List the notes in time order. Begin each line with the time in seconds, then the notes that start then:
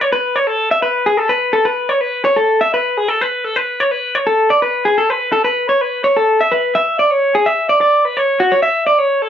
0.01 C#5
0.12 B4
0.36 C#5
0.47 A4
0.71 E5
0.82 B4
1.06 G#4
1.17 A4
1.29 B4
1.53 A4
1.65 B4
1.89 C#5
2.01 B4
2.25 C#5
2.36 A4
2.61 E5
2.74 B4
2.97 G#4
3.09 A4
3.21 B4
3.45 A4
3.56 B4
3.80 C#5
3.91 B4
4.15 C#5
4.27 A4
4.50 D5
4.62 B4
4.85 G#4
4.98 A4
5.10 B4
5.33 A4
5.45 B4
5.69 C#5
5.81 B4
6.04 C#5
6.17 A4
6.41 E5
6.51 B4
6.75 E5
6.99 D5
7.11 C#5
7.35 G#4
7.46 E5
7.69 D5
7.81 D5
8.05 B4
8.17 C#5
8.40 F#4
8.52 C#5
8.62 E5
8.87 D5
8.98 C#5
9.22 A4